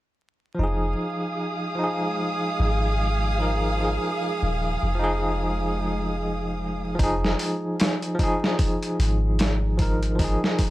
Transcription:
0.55 F3
0.59 F1 G#3 D#4 G#4 F5 D#6
0.64 G#4
1.75 F3
1.79 D#4
1.84 G#4
2.60 G#1
3.38 F3 D#4
3.42 A#4
3.76 F3 D#4
3.85 G#4
4.43 D#1
4.83 F1
4.95 F3
4.99 D#4
5.04 G#4
6.95 F3
6.99 F1 D#4, kick, open hi-hat
7.04 G#4
7.24 snare
7.39 open hi-hat
7.80 snare, open hi-hat
8.02 closed hi-hat
8.15 F3
8.19 D#4, kick, open hi-hat
8.24 G#4
8.44 snare
8.59 kick, open hi-hat
8.82 closed hi-hat
8.99 G#1, open hi-hat
9.39 snare, open hi-hat
9.78 F3 D#4, kick, open hi-hat
9.82 A#4
10.03 closed hi-hat
10.15 F3, kick, open hi-hat
10.20 D#4
10.24 G#4
10.44 snare
10.59 kick, open hi-hat

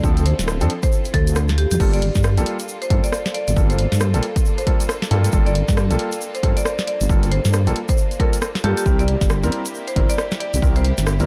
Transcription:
Already playing: C4 E4 F4 A4
0.04 D2 F3 C4 D4 A4, kick, shaker
0.17 closed hi-hat, shaker
0.25 C5, open hi-hat
0.39 D1, snare, closed hi-hat, shaker
0.48 cross-stick, shaker
0.61 F2 F3 C4 D4 A4, closed hi-hat, shaker
0.70 open hi-hat
0.83 C5, kick, closed hi-hat, shaker
0.92 shaker
1.05 closed hi-hat, shaker
1.14 D2 A4, kick, open hi-hat
1.27 closed hi-hat, shaker
1.35 cross-stick, open hi-hat, shaker
1.49 snare, closed hi-hat, shaker
1.58 G4, open hi-hat
1.71 F2 G4, closed hi-hat, shaker
1.80 G1 G3 A#3 D4 F4 A4, kick, crash, shaker
1.93 D5, closed hi-hat, shaker
2.02 open hi-hat
2.15 G2, kick, snare, closed hi-hat, shaker
2.23 cross-stick, shaker
2.37 A#1 G3 A#3 F4 A4, closed hi-hat, shaker
2.46 open hi-hat
2.59 open hi-hat, shaker
2.68 shaker
2.82 C5, closed hi-hat, shaker
2.90 G2 G3 A#3 F4 A4 C5, kick, open hi-hat
3.04 D5, closed hi-hat, shaker
3.12 cross-stick, shaker
3.26 snare, closed hi-hat, shaker
3.34 D5, open hi-hat
3.48 G1 D5, closed hi-hat, shaker
3.56 G1 G3 A#3 F4 A4, kick, shaker
3.70 C5, closed hi-hat, shaker
3.79 C5, open hi-hat
3.92 G2, snare, closed hi-hat, shaker
4.00 cross-stick, shaker
4.14 A#1 G3 A#3 F4 A4, closed hi-hat, shaker
4.23 open hi-hat
4.36 kick, closed hi-hat, shaker
4.45 shaker
4.58 C5, closed hi-hat, shaker
4.67 G3 A#3 F4 A4, kick, open hi-hat
4.80 closed hi-hat, shaker
4.89 cross-stick, shaker
5.02 snare, closed hi-hat, shaker
5.11 G2 G3 A#3 F4 A4, open hi-hat
5.24 closed hi-hat, shaker
5.32 G1 G3 A#3 F4 A4, kick, shaker
5.46 D5, closed hi-hat, shaker
5.55 open hi-hat
5.68 G2, kick, snare, closed hi-hat, shaker
5.77 cross-stick, shaker
5.90 A#1 G3 A#3 F4 A4, closed hi-hat, shaker
5.99 open hi-hat
6.12 open hi-hat, shaker
6.21 shaker
6.35 C5, closed hi-hat, shaker
6.43 G2 G3 A#3 F4 A4 C5, kick, open hi-hat
6.57 D5, closed hi-hat, shaker
6.65 cross-stick, shaker
6.79 snare, closed hi-hat, shaker
6.87 D5, open hi-hat
7.01 G1, closed hi-hat, shaker
7.09 G1 G3 A#3 F4 A4, kick, shaker
7.23 closed hi-hat, shaker
7.31 C5, open hi-hat
7.45 G2, snare, closed hi-hat, shaker
7.53 cross-stick, shaker
7.67 A#1 G3 A#3 F4 A4, closed hi-hat, shaker
7.76 open hi-hat
7.89 C5, kick, closed hi-hat, shaker
7.97 shaker
8.11 closed hi-hat, shaker
8.20 G3 A#3 F4 A4 A#4, kick, open hi-hat
8.33 closed hi-hat, shaker
8.41 cross-stick, shaker
8.55 snare, closed hi-hat, shaker
8.64 G2 G3 A#3 F4 G4 A4, open hi-hat
8.77 G4, closed hi-hat, shaker
8.86 C2 G3 C4 E4 G4 A#4, kick, shaker
8.99 D5, closed hi-hat, shaker
9.08 open hi-hat
9.21 G1, kick, snare, closed hi-hat, shaker
9.29 cross-stick, shaker
9.43 E2 G3 C4 E4 A#4, closed hi-hat, shaker
9.52 open hi-hat
9.65 open hi-hat, shaker
9.75 shaker
9.87 C5, closed hi-hat, shaker
9.96 G1 G3 C4 E4 A#4 C5, kick, open hi-hat
10.09 D5, closed hi-hat, shaker
10.18 cross-stick, shaker
10.32 snare, closed hi-hat, shaker
10.40 D5, open hi-hat
10.54 C2 D5, closed hi-hat, shaker
10.62 C2 G3 C4 E4 A#4, kick, shaker
10.76 C5, closed hi-hat, shaker
10.85 C5, open hi-hat
10.98 G1, snare, closed hi-hat, shaker
11.07 cross-stick, shaker
11.20 E2 G3 C4 E4 A#4, closed hi-hat, shaker

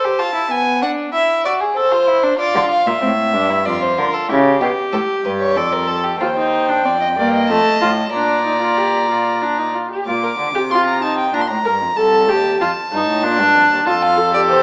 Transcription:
Already playing: C5
0.04 G4
0.19 F4 A5
0.35 E4
0.51 B3 G#5
0.82 D4 F#5
1.13 E4 E5
1.45 F#4 D5
1.60 G#4
1.76 A4 C5
1.91 F4
2.07 E4
2.23 D4
2.38 F4 D5
2.55 D3
2.71 F5
2.87 A#2 E5
3.02 A2 C4
3.34 G2 D4
3.49 E4
3.65 F2 F4 D5
3.82 C5
3.98 D3 A#4
4.13 A4
4.29 C#3 E4 G4
4.61 B2 G4
4.92 A2 A4
5.25 G2 B4
5.40 C#5
5.56 F2 A4 D5
5.73 A#4
5.88 A4
6.04 G4
6.20 D#2 F4 C5 G5
6.37 D#4
6.68 D4
6.85 F2 C4 D5
7.01 D#5
7.17 G2 A#3 D5
7.34 D#5
7.49 F2 A3 A5
7.81 A2 F4
8.13 A#2 D4 D5 A#5
8.45 D#4
8.62 F4
8.77 G4
9.10 F4
9.42 D4
9.58 D#4
9.74 F4
9.91 G4
10.07 A#2 F4 D6
10.23 A#4
10.39 D3
10.55 C3 G4
10.71 F4 C6
10.86 A#5
11.02 D#4 A5
11.18 G5
11.33 A#2 D4 A#5
11.41 C6
11.47 A2 A#5
11.65 G2 A#4
11.82 F2
11.97 C2 A4 A5
12.29 D#2 G4
12.60 F2 F4 A5
12.92 G2 D#4
13.08 A2
13.23 A#2 D4
13.39 G2
13.55 F2
13.71 D#2
13.86 F2 F4 A4 A5
14.02 F5
14.17 A4
14.33 G4 D5
14.50 E2 C5

